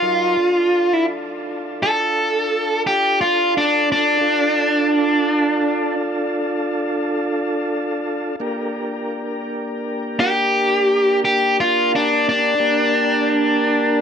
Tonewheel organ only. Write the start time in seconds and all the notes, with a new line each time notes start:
0.02 F#3 D#4 A#4
0.39 D4 F4 A4
4.21 D4 F4 A4
8.40 A#3 D4 G4 A#4
12.59 A#3 D4 G4 A#4